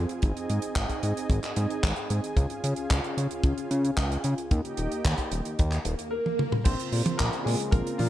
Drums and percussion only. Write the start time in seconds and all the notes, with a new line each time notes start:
0.09 closed hi-hat
0.22 kick, closed hi-hat
0.37 closed hi-hat
0.50 closed hi-hat
0.62 closed hi-hat
0.76 kick, clap, closed hi-hat
0.90 kick, closed hi-hat
1.03 closed hi-hat
1.17 closed hi-hat
1.30 kick, closed hi-hat
1.43 clap, closed hi-hat
1.56 closed hi-hat
1.70 closed hi-hat
1.84 kick, clap, closed hi-hat
1.96 closed hi-hat
2.10 closed hi-hat
2.24 closed hi-hat
2.37 kick, closed hi-hat
2.50 closed hi-hat
2.64 closed hi-hat
2.76 closed hi-hat
2.90 kick, clap, closed hi-hat
3.04 closed hi-hat
3.18 closed hi-hat
3.31 closed hi-hat
3.43 kick, closed hi-hat
3.58 closed hi-hat
3.71 closed hi-hat
3.85 closed hi-hat
3.97 kick, clap, closed hi-hat
4.12 closed hi-hat
4.24 closed hi-hat
4.38 closed hi-hat
4.51 kick, closed hi-hat
4.65 closed hi-hat
4.77 closed hi-hat
4.92 closed hi-hat
5.05 kick, clap, closed hi-hat
5.18 kick, closed hi-hat
5.32 closed hi-hat
5.45 closed hi-hat
5.59 kick, closed hi-hat
5.72 clap, closed hi-hat
5.85 closed hi-hat
5.99 closed hi-hat
6.26 high tom
6.39 mid tom
6.52 mid tom
6.65 kick, closed hi-hat, crash
6.80 closed hi-hat
6.92 open hi-hat
7.06 closed hi-hat, high tom
7.19 kick, clap, closed hi-hat
7.33 closed hi-hat
7.47 open hi-hat
7.60 closed hi-hat
7.72 kick, closed hi-hat
7.87 closed hi-hat
7.99 open hi-hat, high tom